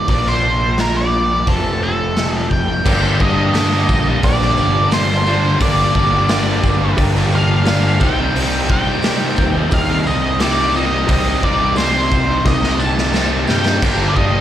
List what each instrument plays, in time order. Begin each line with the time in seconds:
0.08 fingered electric bass A#1, overdriven electric guitar A#2 F3 A#3 D4, lead electric guitar D5, kick, open hi-hat
0.26 lead electric guitar C5, snare
0.78 lead electric guitar A#4, snare, open hi-hat
0.97 lead electric guitar D5
1.47 fingered electric bass F1, overdriven electric guitar F2 C3 F3 A3, lead electric guitar A4, kick, open hi-hat
1.51 overdriven electric guitar C4
1.83 lead electric guitar A5
2.17 snare, open hi-hat
2.36 lead electric guitar G5
2.51 fingered electric bass F1, lead electric guitar G5, kick
2.85 fingered electric bass G1, overdriven electric guitar G2 D3 G3 A#3 D4, tonewheel organ D3 G3 A#3 G4, upright piano D4 G4 A#4 D5, kick, crash
3.20 fingered electric bass G2, overdriven electric guitar D3 G3 A#3 D4, lead electric guitar D#5, kick
3.37 overdriven electric guitar G3 A#3 D4
3.54 overdriven electric guitar G2 D3 G3 A#3 D4, upright piano A#3 G4 A#4 D6, snare, open hi-hat, tambourine
3.71 overdriven electric guitar G3 A#3 D4
3.88 fingered electric bass A#1, kick, tambourine
4.06 overdriven electric guitar G3 A#3 D4
4.23 fingered electric bass A#1, upright piano D4 G4 A#4 D5, lead electric guitar D5, kick, open hi-hat, tambourine
4.40 overdriven electric guitar G3 A#3 D4, snare
4.57 fingered electric bass G1, overdriven electric guitar D3 G3 A#3 D4, tambourine
4.75 overdriven electric guitar G3 A#3 D4
4.91 overdriven electric guitar G2 D3 G3 A#3, upright piano D4 G4 A#4 C5, lead electric guitar C5, snare, open hi-hat, tambourine
4.95 overdriven electric guitar D4
5.26 distorted electric guitar G2, overdriven electric guitar D3 G3 A#3 D4, tambourine
5.44 overdriven electric guitar G3 A#3 D4
5.60 fingered electric bass G1, overdriven electric guitar G2 D3 G3 A#3, tonewheel organ G3 A#3 D4 G4, upright piano D4 G4 A#4 D5, lead electric guitar D5, kick, open hi-hat
5.64 overdriven electric guitar D4
5.95 fingered electric bass G1, overdriven electric guitar D3 G3 A#3 D4, kick
6.13 overdriven electric guitar G3 A#3 D4
6.29 overdriven electric guitar G2 D3 G3 A#3, upright piano D4 G4 A#4 F5, snare, open hi-hat, tambourine
6.33 overdriven electric guitar D4
6.47 overdriven electric guitar G3 A#3 D4
6.63 fingered electric bass G1, kick, tambourine
6.80 overdriven electric guitar G3 A#3 D4
6.97 fingered electric bass G1, upright piano D4 G4 A#4 D5, kick, open hi-hat, tambourine
7.15 overdriven electric guitar G3 A#3 D4, snare
7.31 overdriven electric guitar D3 G3 A#3 D4, lead electric guitar F5, tambourine
7.49 overdriven electric guitar G3 A#3 D4
7.65 overdriven electric guitar G2 D3 G3 A#3, upright piano D4 G4 A#4 F5, snare, open hi-hat, tambourine
7.69 overdriven electric guitar D4
8.00 fingered electric bass C2, overdriven electric guitar C3 G3 C4, tonewheel organ A#3 C4 D#4 G4, upright piano D#4 G4 A#4 C5, lead electric guitar G5, kick, tambourine
8.04 overdriven electric guitar D#4
8.17 overdriven electric guitar G3 C4 D#4
8.34 fingered electric bass C2, overdriven electric guitar C3 G3 C4, open hi-hat
8.38 overdriven electric guitar D#4
8.70 fingered electric bass C3, overdriven electric guitar C3 G3 C4 D#4, lead electric guitar G5, kick
8.87 overdriven electric guitar G3 C4 D#4
9.02 overdriven electric guitar C3 G3 C4, upright piano D#4 G4 A#4 C5, snare, open hi-hat, tambourine
9.07 overdriven electric guitar D#4
9.20 overdriven electric guitar G3 C4 D#4
9.36 fingered electric bass D#2, kick, tambourine
9.55 overdriven electric guitar G3 C4 D#4
9.71 fingered electric bass D#2, upright piano D#4 G4 A#4 D#5, lead electric guitar F5, kick, open hi-hat, tambourine
9.88 overdriven electric guitar G3 C4 D#4
10.05 fingered electric bass C2, overdriven electric guitar C3 G3 C4 D#4, lead electric guitar D#5, tambourine
10.22 overdriven electric guitar G3 C4 D#4
10.40 overdriven electric guitar C3 G3 C4 D#4, upright piano D#4 G4 A#4 C5, lead electric guitar D5, snare, open hi-hat, tambourine
10.74 overdriven electric guitar C3 G3 C4 D#4, tonewheel organ A#3 C4 D#4 G4, lead electric guitar D#5, tambourine
10.90 overdriven electric guitar G3 C4 D#4
11.07 fingered electric bass C2, overdriven electric guitar C3 G3 C4 D#4, upright piano D#4 G4 A#4 C5, lead electric guitar D#5, kick, open hi-hat, tambourine
11.42 fingered electric bass C2, overdriven electric guitar C3 G3 C4 D#4, lead electric guitar D5, kick, tambourine
11.60 overdriven electric guitar G3 C4 D#4
11.75 overdriven electric guitar C3 G3 C4, upright piano D#4 G4 A#4 D5, lead electric guitar C5, snare, open hi-hat, tambourine
11.80 overdriven electric guitar D#4
11.93 overdriven electric guitar G3 C4 D#4
12.11 fingered electric bass C2, kick, tambourine
12.28 overdriven electric guitar G3 C4 D#4
12.45 fingered electric bass C2, upright piano D#4 G4 A#4 D6, lead electric guitar D#5, kick, snare, tambourine
12.62 overdriven electric guitar G3 C4 D#4, snare
12.79 overdriven electric guitar C3 G3 C4 D#4, lead electric guitar A5, tambourine
12.96 overdriven electric guitar G3 C4 D#4, snare
13.13 overdriven electric guitar C3 G3 C4, upright piano D#4 G4 A#4 C5, snare, tambourine
13.18 overdriven electric guitar D#4
13.47 fingered electric bass G2, overdriven electric guitar C3 G3 C4, lead electric guitar G5, snare, tambourine
13.52 overdriven electric guitar D#4
13.66 overdriven electric guitar G3 C4 D#4, snare
13.81 fingered electric bass G1, overdriven electric guitar G2 D3 G3 A#3, tonewheel organ D3 A#3 G4 A#4, upright piano D4 G4 A#4 D5, kick, crash
13.86 overdriven electric guitar D4
14.09 lead electric guitar D5
14.16 fingered electric bass G2, overdriven electric guitar D3 G3 A#3 D4, lead electric guitar D#5, kick
14.33 overdriven electric guitar A#3 D4
14.37 overdriven electric guitar G3